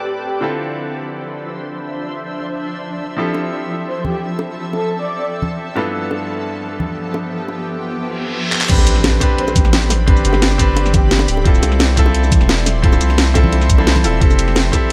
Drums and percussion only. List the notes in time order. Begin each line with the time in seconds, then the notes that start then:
3.34 high bongo
4.05 high conga
4.39 high bongo
4.73 high bongo
5.42 high conga
5.76 high bongo
6.11 high bongo
6.80 high conga
7.14 high bongo
7.48 high bongo
8.52 clap
8.61 clap
8.70 kick, closed hi-hat, crash
8.78 high bongo, shaker
8.87 closed hi-hat, shaker
8.96 snare
9.04 snare, closed hi-hat, high bongo
9.20 kick, closed hi-hat, high bongo, shaker
9.38 closed hi-hat
9.48 high bongo, shaker
9.56 kick, closed hi-hat, high conga, shaker
9.65 snare, high bongo
9.73 snare, closed hi-hat
9.82 shaker
9.90 snare, open hi-hat, high bongo, shaker
10.08 kick, closed hi-hat, high bongo
10.17 shaker
10.25 closed hi-hat, shaker
10.33 snare, high bongo
10.42 snare, closed hi-hat
10.51 high bongo, shaker
10.59 kick, closed hi-hat, shaker
10.76 closed hi-hat, high bongo
10.86 snare, shaker
10.94 kick, closed hi-hat, high bongo, high conga, shaker
11.11 snare, closed hi-hat
11.19 high bongo, shaker
11.28 open hi-hat, shaker
11.37 high bongo
11.45 kick, closed hi-hat
11.55 shaker
11.63 closed hi-hat, high bongo, shaker
11.72 snare
11.79 snare, closed hi-hat, high bongo
11.97 kick, closed hi-hat, shaker
12.06 high bongo
12.14 closed hi-hat
12.23 high bongo, shaker
12.32 kick, closed hi-hat, high conga, shaker
12.41 snare
12.49 snare, closed hi-hat, high bongo
12.58 shaker
12.66 snare, open hi-hat, high bongo, shaker
12.83 kick, closed hi-hat
12.93 high bongo, shaker
13.01 closed hi-hat, shaker
13.10 snare, high bongo
13.18 snare, closed hi-hat
13.27 shaker
13.35 kick, closed hi-hat, high bongo, shaker
13.44 high conga
13.53 closed hi-hat, high bongo
13.61 snare, shaker
13.69 kick, closed hi-hat, high conga, shaker
13.78 high bongo
13.87 snare, closed hi-hat
13.96 high bongo, high conga, shaker
14.04 open hi-hat, shaker
14.21 kick, closed hi-hat
14.30 high bongo, shaker
14.39 closed hi-hat, shaker
14.48 snare
14.56 snare, closed hi-hat, high bongo
14.73 kick, closed hi-hat, high bongo, shaker